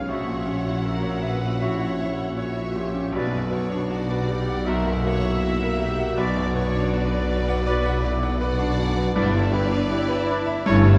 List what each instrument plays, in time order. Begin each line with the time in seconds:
Already playing: grand piano B1 B2 G#3 C#4 F4 G#4 C#5 F5, french horn section C#4
0.08 grand piano A#1, double bass section A#1, tuba A#1, cello section A#2, french horn section F#4, viola section F#4, clarinet F#4, violin section C#5 F#5, oboe C#5, trumpet E5, flute E5
0.29 grand piano A#2
0.47 grand piano C#4
0.68 grand piano E4
0.85 grand piano F#4, violin section A#4
1.03 grand piano C#5
1.22 violin section B4, grand piano E5
1.41 grand piano F#5
1.60 viola section E4, clarinet F#4, violin section C#5, oboe C#5, grand piano E5, flute E5
1.79 grand piano F#5
2.01 viola section E4, grand piano E5
2.19 grand piano F#5
2.37 viola section F#4, violin section C#5 E5, grand piano C#5
2.57 grand piano E4
2.75 grand piano A#2, viola section G4
2.95 grand piano C#4
3.12 grand piano B1, double bass section B1, tuba B1, cello section B2, french horn section B3, clarinet F#4, viola section F#4, oboe B4, violin section B4 D5, flute D5
3.31 grand piano F#2
3.50 grand piano B3, violin section C#5
3.72 grand piano D4
3.89 viola section F#4, grand piano F#4, trumpet D5, violin section D5 F#5
4.10 grand piano B4
4.27 viola section G4, grand piano D5
4.49 grand piano F#5
4.64 grand piano B1, french horn section A#3 F#4, clarinet F#4, viola section F#4, violin section A#4, oboe A#4, flute E5, trumpet E5
4.85 grand piano F#2
5.05 grand piano A#3, violin section C#5
5.24 grand piano E4
5.40 viola section E4, grand piano F#4, violin section E5
5.63 grand piano A#4
5.78 viola section G4, grand piano E5
5.99 grand piano F#5
6.16 double bass section B1, grand piano B1, tuba B1, cello section B2, french horn section B3, viola section F#4, clarinet F#4, oboe B4, violin section D5, flute D5, trumpet D5
6.36 grand piano F#2
6.54 grand piano B3, violin section C#5
6.76 grand piano D4
6.94 grand piano F#4, violin section B4
7.11 grand piano B4
7.31 grand piano D5
7.49 grand piano F#5
7.66 viola section F#4, clarinet F#4, oboe B4, grand piano D5, flute D5
7.85 grand piano F#5
8.02 viola section E4, grand piano D5
8.23 grand piano F#5
8.40 viola section F#4, grand piano B4, violin section D5 F#5
8.59 grand piano D4
8.80 grand piano F#2
8.97 grand piano B3
9.15 double bass section G1, tuba G1, cello section G2, grand piano G2, french horn section B3 E4, violin section D4 D5, viola section E4, clarinet E4, oboe B4, trumpet D5, flute D5
9.34 grand piano D3, violin section E4
9.52 grand piano B3, clarinet E4, violin section G4, oboe B4, flute D5
9.71 grand piano D4, violin section B4
9.90 grand piano E4, clarinet E4, violin section G4, oboe B4, flute D5
10.09 violin section E4, grand piano B4
10.26 violin section D4, oboe B4, grand piano D5, flute D5
10.31 clarinet E4
10.46 violin section E4, grand piano E5
10.66 double bass section G1, tuba G1, grand piano G2, cello section G2, french horn section A3 E4, violin section C#4 C#5, clarinet E4, oboe A4, trumpet C#5, flute C#5
10.84 grand piano G3, violin section E4